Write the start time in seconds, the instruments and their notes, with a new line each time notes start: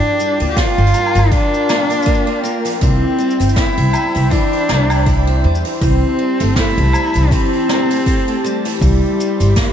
Already playing: steel-string acoustic guitar F3, cello D4, ambient pad F4 A#4 G5
0.19 steel-string acoustic guitar G3, cabasa
0.40 upright bass D2, steel-string acoustic guitar A#3, open hi-hat
0.51 cello G4
0.56 steel-string acoustic guitar D4, cello F4, kick, snare, open hi-hat, cabasa
0.78 upright bass G1, steel-string acoustic guitar A#3
0.86 open hi-hat
0.94 steel-string acoustic guitar G3, cabasa, low woodblock
1.06 low woodblock
1.15 upright bass G1, steel-string acoustic guitar F3, open hi-hat, cabasa
1.19 low woodblock
1.31 steel-string acoustic guitar F3, cello D4, kick, open hi-hat
1.53 open hi-hat, cabasa
1.61 open hi-hat
1.69 steel-string acoustic guitar A#3, snare, cabasa, low woodblock
1.80 open hi-hat
1.90 steel-string acoustic guitar A#3, open hi-hat, cabasa
2.02 steel-string acoustic guitar A#3, cabasa
2.07 kick, open hi-hat, cabasa
2.15 cabasa
2.27 steel-string acoustic guitar A#3, open hi-hat
2.43 cello A#3, steel-string acoustic guitar A#4, cabasa
2.65 steel-string acoustic guitar F3, open hi-hat, cabasa
2.80 upright bass C2, steel-string acoustic guitar E3, cello C4, ambient pad E4 C5 G5, kick, open hi-hat, cabasa
3.18 steel-string acoustic guitar G3, cabasa
3.30 cabasa
3.40 upright bass G1, steel-string acoustic guitar C4, open hi-hat, cabasa
3.49 cabasa
3.55 cello E4, steel-string acoustic guitar E4, kick, snare, open hi-hat, cabasa
3.77 upright bass C2, steel-string acoustic guitar C4, open hi-hat
3.93 steel-string acoustic guitar G3, cabasa, low woodblock
4.15 upright bass C2, steel-string acoustic guitar E3, open hi-hat, cabasa
4.30 steel-string acoustic guitar E3, cello D4, kick, open hi-hat, cabasa
4.53 open hi-hat
4.69 upright bass C2, steel-string acoustic guitar G3, snare, cabasa, low woodblock
4.90 steel-string acoustic guitar C4, open hi-hat, cabasa, low woodblock
5.06 steel-string acoustic guitar E4, kick, open hi-hat, cabasa
5.27 steel-string acoustic guitar C4, open hi-hat
5.44 upright bass E2, steel-string acoustic guitar G3
5.55 cabasa
5.65 steel-string acoustic guitar E3, open hi-hat
5.81 upright bass C2, steel-string acoustic guitar E3, cello C4, ambient pad G4 A5, kick, open hi-hat, cabasa
6.19 steel-string acoustic guitar G3
6.40 upright bass G1, steel-string acoustic guitar A3, open hi-hat, cabasa
6.56 steel-string acoustic guitar C4, cello E4, kick, snare, open hi-hat, cabasa
6.78 upright bass C2, steel-string acoustic guitar A3, open hi-hat
6.93 steel-string acoustic guitar G3, cabasa, low woodblock
7.14 upright bass C2, steel-string acoustic guitar E3, open hi-hat, cabasa
7.31 steel-string acoustic guitar E3, cello C4, kick, open hi-hat, cabasa
7.52 open hi-hat
7.69 steel-string acoustic guitar G3, snare, cabasa, low woodblock
7.90 steel-string acoustic guitar A3, open hi-hat, cabasa
8.06 steel-string acoustic guitar C4, kick, open hi-hat, cabasa
8.28 steel-string acoustic guitar A3, open hi-hat
8.44 steel-string acoustic guitar G3, cello A3, cabasa
8.65 steel-string acoustic guitar E3, open hi-hat, cabasa
8.68 open hi-hat
8.73 open hi-hat
8.76 open hi-hat
8.79 upright bass C2, cello G3, ambient pad E5 C6, kick, open hi-hat
8.82 steel-string acoustic guitar E3, open hi-hat, cabasa
9.20 steel-string acoustic guitar G3, cabasa
9.40 upright bass G1, steel-string acoustic guitar C4, open hi-hat, cabasa
9.56 cello A#3, steel-string acoustic guitar E4, kick, snare, open hi-hat, cabasa